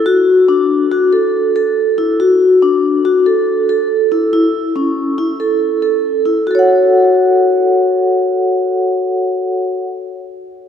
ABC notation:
X:1
M:5/4
L:1/8
Q:1/4=141
K:F#m
V:1 name="Vibraphone"
F2 D2 F A2 A2 E | F2 D2 F A2 A2 E | E2 C2 E A2 A2 E | [FAcf]8- [FAcf]2- |
[FAcf]8- [FAcf]2 |]